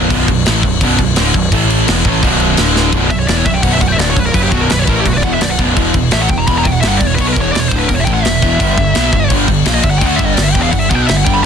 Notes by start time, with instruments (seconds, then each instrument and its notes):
Already playing: distorted electric guitar F#2 B2
0.10 picked electric bass B0, distorted electric guitar B1 F#2 B2, kick, crash
0.28 picked electric bass B0, distorted electric guitar B1 F#2, kick, crash
0.46 picked electric bass A1, distorted electric guitar A2 E3 A3, snare, crash
0.63 picked electric bass B0, distorted electric guitar B1 F#2, kick, crash
0.81 picked electric bass B0, distorted electric guitar B1 F#2 B2, kick, crash
0.99 picked electric bass B0, distorted electric guitar B1 F#2, kick, crash
1.16 picked electric bass D1, distorted electric guitar D2 A2 D3, snare, crash
1.34 picked electric bass B0, distorted electric guitar B1 F#2, kick, crash
1.52 picked electric bass A1, distorted electric guitar A2 E3 A3, kick, crash
1.70 crash
1.88 picked electric bass E1, distorted electric guitar E2 B2 E3, snare, crash
2.05 picked electric bass A1, distorted electric guitar A2 E3 A3, kick, crash
2.22 picked electric bass B0, distorted electric guitar B1 F#2 B2, kick, crash
2.40 crash
2.57 picked electric bass D1, distorted electric guitar D2 A2 D3, snare, crash
2.76 snare
2.92 picked electric bass B0, distorted electric guitar B1 F#2 B2, kick, crash
3.10 picked electric bass B0, distorted electric guitar B1 F#2, lead electric guitar E5, kick, crash
3.19 lead electric guitar C#5
3.28 picked electric bass E1, distorted electric guitar E2 B2 E3, lead electric guitar D5, snare, crash
3.37 lead electric guitar C#5
3.46 picked electric bass B0, distorted electric guitar B1 F#2, lead electric guitar E5, kick, crash
3.54 lead electric guitar G5
3.63 picked electric bass B0, distorted electric guitar B1 F#2 B2, lead electric guitar F#5, kick, crash
3.73 lead electric guitar E5
3.81 picked electric bass B0, distorted electric guitar B1 F#2, lead electric guitar F#5, kick, crash
3.88 lead electric guitar G5
3.92 lead electric guitar E5
3.97 picked electric bass D1, distorted electric guitar D2 A2 D3, lead electric guitar D5, snare, crash
4.10 lead electric guitar C#5
4.16 picked electric bass B0, distorted electric guitar B1 F#2, lead electric guitar B4, kick, crash
4.26 lead electric guitar A#4
4.34 picked electric bass F#1, distorted electric guitar F#2 C#3 F#3, lead electric guitar B4, kick, crash
4.43 lead electric guitar G4
4.51 picked electric bass B0, distorted electric guitar B1 F#2 B2, lead electric guitar F#4, kick, crash
4.61 lead electric guitar A#4
4.69 picked electric bass B0, distorted electric guitar B1 F#2, lead electric guitar B4, snare, crash
4.79 lead electric guitar C#5
4.84 picked electric bass A1, distorted electric guitar A2 E3 A3, lead electric guitar B4, kick, crash
4.89 lead electric guitar A#4
5.01 lead electric guitar G4
5.05 picked electric bass B0, distorted electric guitar B1 F#2, lead electric guitar F#4, kick, crash
5.13 lead electric guitar B4
5.18 lead electric guitar D5
5.22 picked electric bass E1, distorted electric guitar E2 B2 E3, lead electric guitar F#5, kick, crash
5.34 lead electric guitar E5
5.41 picked electric bass B0, distorted electric guitar B1 F#2, lead electric guitar D5, snare, crash
5.50 lead electric guitar F#5
5.58 picked electric bass B0, distorted electric guitar B1 F#2 B2, kick, crash
5.75 picked electric bass E1, distorted electric guitar E2 B2 E3, kick, crash
5.94 picked electric bass E1, distorted electric guitar E2 B2, kick, crash
6.11 picked electric bass A1, distorted electric guitar A2 E3 A3, lead electric guitar E5, snare, crash
6.22 lead electric guitar F#5
6.28 picked electric bass E1, distorted electric guitar E2 B2, lead electric guitar G5, kick, crash
6.38 lead electric guitar A#5
6.47 picked electric bass E1, distorted electric guitar E2 B2 E3, lead electric guitar B5, kick, crash
6.58 lead electric guitar A#5
6.63 picked electric bass E1, distorted electric guitar E2 B2, lead electric guitar G5, kick, crash
6.73 lead electric guitar F#5
6.81 picked electric bass G1, distorted electric guitar G2 D3 G3, lead electric guitar E5, snare, crash
6.88 lead electric guitar F#5
6.97 picked electric bass E1, distorted electric guitar E2 B2, lead electric guitar D5, kick
7.01 crash
7.07 lead electric guitar C#5
7.15 distorted electric guitar B2 F#3 B3, lead electric guitar B4, kick, crash
7.19 picked electric bass B1, lead electric guitar C#5
7.28 lead electric guitar B4
7.33 picked electric bass E1, distorted electric guitar E2, lead electric guitar A#4, kick
7.37 distorted electric guitar B2 E3, crash
7.41 lead electric guitar C#5
7.51 picked electric bass E1, distorted electric guitar E2 B2, lead electric guitar D5
7.55 snare, crash
7.60 lead electric guitar C#5
7.69 picked electric bass D1, distorted electric guitar D2 A2, lead electric guitar C5, kick, crash
7.73 distorted electric guitar D3
7.79 lead electric guitar B4
7.88 picked electric bass E1, distorted electric guitar E2 B2, lead electric guitar A#4, kick, crash
7.94 lead electric guitar C#5
8.00 lead electric guitar E5
8.05 picked electric bass A1, distorted electric guitar A2 E3 A3, lead electric guitar G5, kick, crash
8.13 lead electric guitar F#5
8.23 picked electric bass E1, distorted electric guitar E2 B2, lead electric guitar E5, snare, crash
8.41 picked electric bass E1, distorted electric guitar E2 B2 E3, kick, crash
8.59 picked electric bass G1, distorted electric guitar G2 D3 G3, kick, crash
8.77 picked electric bass G1, distorted electric guitar G2 D3, kick, crash
8.95 picked electric bass B1, distorted electric guitar B2 F#3 B3, snare, crash
9.12 picked electric bass G1, distorted electric guitar G2 D3, kick, crash
9.30 picked electric bass G1, distorted electric guitar G2 D3 G3, kick, crash
9.48 picked electric bass G1, distorted electric guitar G2 D3, kick, crash
9.65 picked electric bass A#1, distorted electric guitar A#2 F3 A#3, snare, crash
9.74 lead electric guitar D#5
9.83 picked electric bass G1, distorted electric guitar G2 D3, lead electric guitar E5, kick, crash
9.90 lead electric guitar F#5
9.98 picked electric bass D2, distorted electric guitar D3 A3 D4, lead electric guitar G5, kick, crash
10.06 lead electric guitar F#5
10.16 picked electric bass G1, distorted electric guitar G2 D3 G3, lead electric guitar E5, kick, crash
10.25 lead electric guitar D#5
10.34 picked electric bass G1, distorted electric guitar G2 D3, lead electric guitar D5, crash
10.38 snare
10.43 lead electric guitar E5
10.52 picked electric bass E1, distorted electric guitar E2 B2 E3, lead electric guitar G5, kick, crash
10.62 lead electric guitar F5
10.72 picked electric bass G1, distorted electric guitar G2 D3, lead electric guitar F#5, kick, crash
10.80 lead electric guitar E5
10.90 picked electric bass B1, distorted electric guitar B2 F#3 B3, lead electric guitar F#5, kick, crash
10.95 lead electric guitar G5
11.03 lead electric guitar F#5
11.08 picked electric bass G1, distorted electric guitar G2 D3, lead electric guitar E5, snare, crash
11.17 lead electric guitar F#5
11.25 picked electric bass G1, distorted electric guitar G2 D3 G3, lead electric guitar G5, kick, crash
11.34 lead electric guitar B5